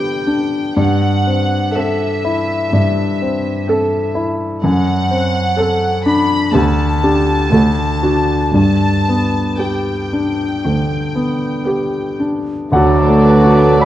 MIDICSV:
0, 0, Header, 1, 12, 480
1, 0, Start_track
1, 0, Key_signature, 1, "major"
1, 0, Tempo, 974026
1, 391, Time_signature, 4, 2, 24, 8
1, 1351, Tempo, 955414
1, 3751, Tempo, 1038062
1, 5671, Tempo, 1061947
1, 6656, End_track
2, 0, Start_track
2, 0, Title_t, "Flute"
2, 0, Program_c, 0, 73
2, 6153, Note_on_c, 0, 81, 43
2, 6656, Note_off_c, 0, 81, 0
2, 6656, End_track
3, 0, Start_track
3, 0, Title_t, "Violin section"
3, 0, Program_c, 1, 48
3, 0, Note_on_c, 1, 79, 49
3, 385, Note_on_c, 1, 78, 59
3, 392, Note_off_c, 1, 79, 0
3, 860, Note_off_c, 1, 78, 0
3, 867, Note_on_c, 1, 76, 55
3, 2068, Note_off_c, 1, 76, 0
3, 2311, Note_on_c, 1, 78, 71
3, 3003, Note_off_c, 1, 78, 0
3, 3025, Note_on_c, 1, 83, 64
3, 3258, Note_on_c, 1, 81, 61
3, 3264, Note_off_c, 1, 83, 0
3, 4221, Note_off_c, 1, 81, 0
3, 4227, Note_on_c, 1, 81, 64
3, 4703, Note_off_c, 1, 81, 0
3, 4711, Note_on_c, 1, 79, 45
3, 5910, Note_off_c, 1, 79, 0
3, 6152, Note_on_c, 1, 74, 46
3, 6656, Note_off_c, 1, 74, 0
3, 6656, End_track
4, 0, Start_track
4, 0, Title_t, "Cor anglais"
4, 0, Program_c, 2, 69
4, 6149, Note_on_c, 2, 74, 42
4, 6656, Note_off_c, 2, 74, 0
4, 6656, End_track
5, 0, Start_track
5, 0, Title_t, "Clarinet"
5, 0, Program_c, 3, 71
5, 6147, Note_on_c, 3, 69, 46
5, 6385, Note_on_c, 3, 71, 43
5, 6392, Note_off_c, 3, 69, 0
5, 6630, Note_on_c, 3, 69, 44
5, 6636, Note_off_c, 3, 71, 0
5, 6656, Note_off_c, 3, 69, 0
5, 6656, End_track
6, 0, Start_track
6, 0, Title_t, "Grand piano"
6, 0, Program_c, 4, 0
6, 0, Control_c, 4, 64, 127
6, 0, Note_on_c, 4, 50, 30
6, 0, Note_on_c, 4, 59, 30
6, 0, Note_on_c, 4, 62, 35
6, 0, Note_on_c, 4, 67, 34
6, 54, Note_off_c, 4, 59, 0
6, 133, Note_off_c, 4, 62, 0
6, 133, Note_on_c, 4, 62, 34
6, 289, Note_off_c, 4, 67, 0
6, 376, Note_on_c, 4, 43, 45
6, 382, Note_off_c, 4, 62, 0
6, 400, Note_off_c, 4, 50, 0
6, 400, Control_c, 4, 64, 0
6, 471, Control_c, 4, 64, 127
6, 626, Note_on_c, 4, 60, 34
6, 867, Note_on_c, 4, 69, 38
6, 1014, Note_off_c, 4, 60, 0
6, 1107, Note_on_c, 4, 64, 38
6, 1254, Note_off_c, 4, 69, 0
6, 1325, Note_off_c, 4, 43, 0
6, 1344, Note_on_c, 4, 43, 41
6, 1493, Note_off_c, 4, 64, 0
6, 1590, Note_on_c, 4, 60, 37
6, 1828, Note_on_c, 4, 69, 42
6, 1975, Note_off_c, 4, 60, 0
6, 2058, Note_on_c, 4, 64, 44
6, 2212, Note_off_c, 4, 69, 0
6, 2285, Note_off_c, 4, 43, 0
6, 2302, Note_off_c, 4, 64, 0
6, 2303, Note_on_c, 4, 42, 53
6, 2317, Control_c, 4, 64, 0
6, 2387, Control_c, 4, 64, 127
6, 2539, Note_on_c, 4, 60, 43
6, 2770, Note_on_c, 4, 69, 41
6, 2923, Note_off_c, 4, 60, 0
6, 3017, Note_on_c, 4, 62, 46
6, 3160, Note_off_c, 4, 69, 0
6, 3240, Note_off_c, 4, 42, 0
6, 3261, Note_off_c, 4, 62, 0
6, 3263, Note_on_c, 4, 38, 51
6, 3272, Control_c, 4, 64, 0
6, 3366, Control_c, 4, 64, 127
6, 3509, Note_on_c, 4, 67, 41
6, 3511, Note_on_c, 4, 62, 37
6, 3734, Note_off_c, 4, 67, 0
6, 3735, Note_off_c, 4, 62, 0
6, 3738, Note_off_c, 4, 38, 0
6, 3752, Note_on_c, 4, 38, 47
6, 3761, Control_c, 4, 64, 0
6, 3834, Control_c, 4, 64, 127
6, 3986, Note_on_c, 4, 62, 34
6, 3987, Note_on_c, 4, 66, 38
6, 4206, Note_off_c, 4, 62, 0
6, 4207, Note_off_c, 4, 66, 0
6, 4209, Note_off_c, 4, 38, 0
6, 4223, Note_on_c, 4, 43, 43
6, 4232, Control_c, 4, 64, 0
6, 4304, Control_c, 4, 64, 127
6, 4477, Note_on_c, 4, 59, 31
6, 4710, Note_on_c, 4, 67, 32
6, 4861, Note_off_c, 4, 59, 0
6, 4958, Note_on_c, 4, 62, 36
6, 5100, Note_off_c, 4, 67, 0
6, 5178, Note_off_c, 4, 43, 0
6, 5199, Note_on_c, 4, 50, 29
6, 5343, Note_off_c, 4, 62, 0
6, 5432, Note_on_c, 4, 59, 30
6, 5579, Note_off_c, 4, 50, 0
6, 5669, Note_on_c, 4, 67, 32
6, 5813, Note_off_c, 4, 59, 0
6, 5909, Note_on_c, 4, 62, 29
6, 6052, Note_off_c, 4, 67, 0
6, 6144, Note_on_c, 4, 38, 47
6, 6148, Note_off_c, 4, 62, 0
6, 6149, Note_on_c, 4, 78, 53
6, 6156, Control_c, 4, 64, 0
6, 6156, Note_on_c, 4, 66, 40
6, 6229, Control_c, 4, 64, 127
6, 6310, Note_on_c, 4, 57, 38
6, 6466, Note_off_c, 4, 66, 0
6, 6472, Note_on_c, 4, 66, 38
6, 6572, Note_off_c, 4, 57, 0
6, 6616, Note_off_c, 4, 78, 0
6, 6632, Note_on_c, 4, 74, 42
6, 6639, Note_on_c, 4, 83, 58
6, 6656, Note_off_c, 4, 38, 0
6, 6656, Note_off_c, 4, 66, 0
6, 6656, Note_off_c, 4, 74, 0
6, 6656, Note_off_c, 4, 83, 0
6, 6656, End_track
7, 0, Start_track
7, 0, Title_t, "Viola section"
7, 0, Program_c, 5, 48
7, 0, Note_on_c, 5, 62, 37
7, 0, Note_on_c, 5, 71, 36
7, 274, Note_off_c, 5, 62, 0
7, 275, Note_off_c, 5, 71, 0
7, 867, Note_on_c, 5, 69, 37
7, 868, Note_on_c, 5, 60, 40
7, 1234, Note_off_c, 5, 60, 0
7, 1234, Note_off_c, 5, 69, 0
7, 1830, Note_on_c, 5, 69, 45
7, 1831, Note_on_c, 5, 60, 44
7, 2193, Note_off_c, 5, 60, 0
7, 2193, Note_off_c, 5, 69, 0
7, 2778, Note_on_c, 5, 60, 43
7, 2779, Note_on_c, 5, 69, 48
7, 3144, Note_off_c, 5, 60, 0
7, 3144, Note_off_c, 5, 69, 0
7, 3262, Note_on_c, 5, 59, 50
7, 3262, Note_on_c, 5, 67, 50
7, 3633, Note_off_c, 5, 59, 0
7, 3633, Note_off_c, 5, 67, 0
7, 3755, Note_on_c, 5, 57, 45
7, 3756, Note_on_c, 5, 66, 45
7, 4109, Note_off_c, 5, 57, 0
7, 4110, Note_off_c, 5, 66, 0
7, 4712, Note_on_c, 5, 67, 36
7, 4715, Note_on_c, 5, 59, 35
7, 5082, Note_off_c, 5, 67, 0
7, 5083, Note_off_c, 5, 59, 0
7, 5669, Note_on_c, 5, 59, 35
7, 5673, Note_on_c, 5, 67, 35
7, 6034, Note_off_c, 5, 59, 0
7, 6035, Note_off_c, 5, 67, 0
7, 6149, Note_on_c, 5, 57, 42
7, 6656, Note_off_c, 5, 57, 0
7, 6656, End_track
8, 0, Start_track
8, 0, Title_t, "Violin section"
8, 0, Program_c, 6, 48
8, 6150, Note_on_c, 6, 57, 37
8, 6261, Note_off_c, 6, 57, 0
8, 6278, Note_on_c, 6, 62, 39
8, 6396, Note_off_c, 6, 62, 0
8, 6397, Note_on_c, 6, 66, 39
8, 6518, Note_off_c, 6, 66, 0
8, 6523, Note_on_c, 6, 62, 38
8, 6638, Note_off_c, 6, 62, 0
8, 6656, End_track
9, 0, Start_track
9, 0, Title_t, "French horn section"
9, 0, Program_c, 7, 60
9, 6154, Note_on_c, 7, 62, 46
9, 6156, Note_on_c, 7, 57, 43
9, 6656, Note_off_c, 7, 57, 0
9, 6656, Note_off_c, 7, 62, 0
9, 6656, End_track
10, 0, Start_track
10, 0, Title_t, "Bassoon"
10, 0, Program_c, 8, 70
10, 6155, Note_on_c, 8, 54, 45
10, 6656, Note_off_c, 8, 54, 0
10, 6656, End_track
11, 0, Start_track
11, 0, Title_t, "Cello section"
11, 0, Program_c, 10, 48
11, 386, Note_on_c, 10, 43, 46
11, 779, Note_off_c, 10, 43, 0
11, 1345, Note_on_c, 10, 43, 46
11, 1737, Note_off_c, 10, 43, 0
11, 2303, Note_on_c, 10, 42, 57
11, 2690, Note_off_c, 10, 42, 0
11, 3261, Note_on_c, 10, 38, 53
11, 3657, Note_off_c, 10, 38, 0
11, 3752, Note_on_c, 10, 38, 53
11, 4132, Note_off_c, 10, 38, 0
11, 4224, Note_on_c, 10, 43, 48
11, 4620, Note_off_c, 10, 43, 0
11, 5202, Note_on_c, 10, 38, 38
11, 5586, Note_off_c, 10, 38, 0
11, 6148, Note_on_c, 10, 38, 49
11, 6554, Note_off_c, 10, 38, 0
11, 6656, End_track
12, 0, Start_track
12, 0, Title_t, "Double bass section"
12, 0, Program_c, 11, 48
12, 6156, Note_on_c, 11, 38, 48
12, 6558, Note_off_c, 11, 38, 0
12, 6656, End_track
0, 0, End_of_file